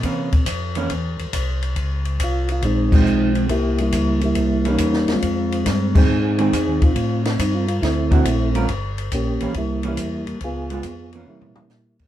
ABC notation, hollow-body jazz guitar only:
X:1
M:4/4
L:1/8
Q:"Swing" 1/4=139
K:Cphr
V:1 name="Hollow-body jazz guitar"
[=E,B,D] z2 [E,B,D] z4 | z4 z [F,A,C]3 | z4 z [=E,B,D]3 | z3 [E,A,C] z [E,A,C] z2 |
z4 z [=D,B,C^F] z [G,_D=FB] | z3 [=E,B,D] z [E,B,D] z2 | z [A,_CF] z [=E,B,D]3 z [E,B,D] |]